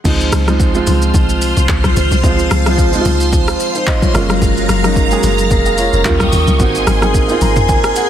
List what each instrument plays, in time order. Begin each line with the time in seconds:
0.04 log drum bass C#2, grand piano F3 G#3 C4 D#4, string machine F4 C5 C6, kick, crash, low conga, shaker
0.20 shaker
0.32 log drum bass C#2, cross-stick, open hi-hat, high conga, shaker
0.46 grand piano F3 G#3 C4 D#4, cross-stick, high conga, shaker
0.60 kick, shaker
0.73 grand piano F3 G#3 C4 F4, shaker
0.87 log drum bass C#2, open hi-hat, high conga, low conga, shaker
1.02 shaker
1.14 log drum bass C2, kick, low conga, shaker
1.29 shaker
1.42 open hi-hat, shaker
1.57 log drum bass C2, shaker
1.69 log drum bass C#2, kick, clap, shaker
1.84 kick, cross-stick, high conga, shaker
1.96 log drum bass C#2, open hi-hat, low conga, shaker
2.11 log drum bass C2, high conga, shaker
2.22 log drum bass C#2, grand piano F3 G#3 C4 F4, kick, low conga, shaker
2.39 shaker
2.50 log drum bass C#2, cross-stick, open hi-hat, high conga, shaker
2.64 grand piano F3 G#3 C4 F4, cross-stick, high conga, shaker
2.78 kick, shaker
2.92 grand piano F3 G#3 C4 D#4, shaker
3.01 grand piano F4
3.05 log drum bass C#2, open hi-hat, high conga, low conga, shaker
3.20 shaker
3.32 kick, low conga, shaker
3.48 cross-stick, shaker
3.60 open hi-hat, shaker
3.75 grand piano D#4 C5, shaker
3.87 grand piano D#5, kick, clap, shaker
4.02 grand piano F4 C#5, kick, high conga, shaker
4.13 log drum bass F#1, string machine F#3 F5 A#5, grand piano G#3 A#3 C#4 F4, cross-stick, open hi-hat, low conga, shaker
4.29 cross-stick, high conga, shaker
4.42 log drum bass F#1, kick, low conga, shaker
4.57 shaker
4.68 log drum bass F#1, cross-stick, open hi-hat, high conga, shaker
4.82 grand piano G#3 A#3 C#4 D#4, cross-stick, high conga, shaker
4.96 kick, shaker
5.09 grand piano G#3 A#3 C#4 G#4, shaker
5.23 log drum bass F#1, open hi-hat, high conga, low conga, shaker
5.38 shaker
5.50 log drum bass F1, kick, low conga, shaker
5.66 grand piano G#4 F5, shaker
5.78 grand piano F4 C#5, open hi-hat, shaker
5.93 log drum bass F1, grand piano C#4 A#4, shaker
6.04 log drum bass D#2, grand piano G3 A#3 C#4 F4, string machine G4 D#5 C#6, kick, clap, shaker
6.20 kick, cross-stick, high conga, shaker
6.32 log drum bass D#2, open hi-hat, low conga, shaker
6.47 log drum bass C#2, high conga, shaker
6.58 log drum bass G#1, grand piano A#3 C4 D#4 F#4, string machine G#4 G#5 C6, kick, low conga, shaker
6.75 shaker
6.87 log drum bass G#1, cross-stick, open hi-hat, high conga, shaker
7.01 grand piano A#3 C4 D#4 G#4, cross-stick, high conga, shaker
7.14 kick, shaker
7.28 grand piano A#3 C4 D#4 F4, shaker
7.41 log drum bass G#1, grand piano A#5, open hi-hat, high conga, low conga, shaker
7.56 mid tom, shaker
7.68 grand piano G#5, kick, low conga, shaker
7.84 cross-stick, shaker
7.96 grand piano F#5, open hi-hat, shaker